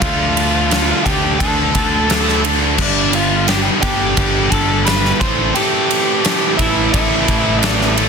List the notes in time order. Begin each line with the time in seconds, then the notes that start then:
0.00 D2 D3 F3 A3 D4 F4 A4 F5, kick, ride
0.37 ride
0.70 D3 F3 A3 D4 A4, snare, ride
1.04 D2 D3 F3 A3 D4 G4 A4 G5, kick, ride
1.39 D2 D3 F3 A3 D4 A4 A5, kick, ride
1.75 D2, kick, ride
2.09 D3 F3 A3 D4 A4, snare, ride
2.28 snare
2.43 D3 F3 A3 D4 A4, ride
2.78 G1 G2 D3 G3 B3 D4 G4 D5, kick, crash
3.13 F4 F5, ride
3.46 G2 D3 G3 B3 D4 G4 G5, snare, ride
3.82 G1 G2 D3 G3 B3 D4 G4 G5, kick, ride
4.17 G1 G2 D3 G3 B3 D4 G4, kick, ride
4.51 G1 A4 A5, kick, ride
4.85 G2 D3 G3 B3 D4 G4 B4 B5, snare, ride
5.05 snare
5.20 A1 A2 E3 A3 C4 E4 A4 C5 C6, kick, ride
5.54 A2 E3 A3 C4 E4 G4 A4 G5, ride
5.91 ride
6.24 A2 E3 A3 C4 E4 A4, snare, ride
6.57 A1 A2 E3 A3 C4 E4 E5, kick, ride
6.61 A4
6.93 A1 A2 E3 A3 C4 E4 A4 E5, kick, ride
7.28 A1, kick, ride
7.62 A2 E3 A3 C4 E4 A4 D5, snare, ride
7.81 snare
7.97 A2 E3 A3 C4 E4 A4, ride